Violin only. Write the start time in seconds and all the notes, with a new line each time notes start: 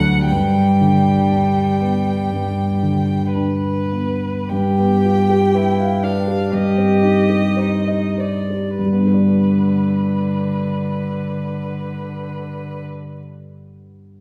Already playing: F#5
0.28 G5
3.33 B4
4.49 G5
6.04 F5
6.54 D#5
8.20 D5
8.79 B4